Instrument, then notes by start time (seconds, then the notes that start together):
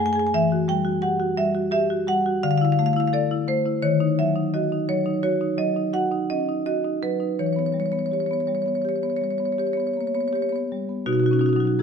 marimba
Already playing: F#2
0.00 A3
0.06 G#5
0.13 G#4 G#5
0.19 G#5
0.27 G#5
0.34 E3 E5
0.52 F#4
0.68 G3 G5
0.85 F#4
1.02 G4 F#5
1.20 F#4
1.37 G3 E5
1.55 F#4
1.71 G4 E5
1.90 F#4
2.07 G3 F#5
2.26 F#4
2.43 D3 F5
2.51 F5
2.58 E4 F5
2.65 F5
2.72 F5
2.79 A3 F5
2.86 F5
2.93 E4 F5
3.00 F5
3.07 F5
3.13 A4 D5
3.31 E4
3.48 A3 C5
3.66 E4
3.82 D#3 C#5
4.00 D#4
4.19 F#3 E5
4.36 D#4
4.54 F#4 D#5
4.72 D#4
4.89 F#3 C#5
5.06 D#4
5.23 F#4 C#5
5.41 D#4
5.58 F#3 D#5
5.76 D#4
5.93 F#4 F#5
6.12 D#4
6.30 C#4 D#5
6.49 D#4
6.66 F#4 D#5
6.85 D#4
7.03 F#3 B4
7.20 D#4
7.39 E3 C#5
7.46 C#5
7.53 B3 C#5
7.59 C#5
7.66 C#5
7.72 G3 C#5
7.80 C#5
7.86 C#5
7.92 B3 C#5
7.99 C#5
8.06 C#5
8.12 G4 C#5
8.20 C#5
8.26 C#5
8.31 B3 C#5
8.40 C#5
8.47 G3 C#5
8.55 C#5
8.62 C#5
8.66 B3 C#5
8.75 C#5
8.82 G4 C#5
8.89 C#5
8.96 C#5
9.03 B3 C#5
9.10 C#5
9.16 C#5
9.21 G3 C#5
9.30 C#5
9.38 B3 C#5
9.45 C#5
9.52 C#5
9.58 G4 C#5
9.67 C#5
9.73 C#5
9.77 B3 C#5
9.87 C#5
9.94 A#3 C#5
10.01 C#5
10.07 C#5
10.15 B3 C#5
10.21 C#5
10.28 C#5
10.33 G4 C#5
10.42 C#5
10.49 B3 C#5
10.56 C#5
10.72 G3
10.89 B3
11.06 B2 D#4 F#4
11.13 D#4 F#4
11.20 D#4 F#4
11.26 F#4
11.31 C#4 D#4 F#4
11.39 D#4 F#4
11.46 D#4 F#4
11.53 F#3 D#4 F#4
11.60 F#4
11.65 D#4 F#4
11.79 A#3 G#4